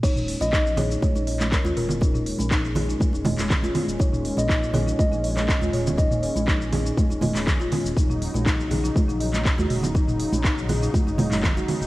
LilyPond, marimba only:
\new Staff \with { instrumentName = "Marimba" } { \time 4/4 \key bes \phrygian \tempo 4 = 121 ees'16 ees'16 r16 des'16 ees'16 r16 aes'16 ees'16 r16 ees'16 ees''16 des'16 r16 f'16 f'16 r16 | ees'16 ees'16 r16 des'16 ees'16 r16 aes'16 ees'16 r16 ees'16 ees''16 des'16 r16 f'16 f'16 r16 | ees'16 ees'16 r16 des'16 ees'16 r16 aes'16 ees'16 r16 ees'16 ees''16 des'16 r16 f'16 f'16 r16 | ees'16 ees'16 r16 des'16 ees'16 r16 aes'16 ees'16 r16 ees'16 ees''16 des'16 r16 f'16 f'16 r16 |
ees'16 ees'16 r16 des'16 ees'16 r16 aes'16 ees'16 r16 ees'16 ees''16 ees''16 r16 ges'16 ges'16 r16 | ees'16 ees'16 r16 des'16 ees'16 r16 aes'16 ees'16 r16 ees'16 ees''16 ees''16 r16 ges'16 ges'16 r16 | }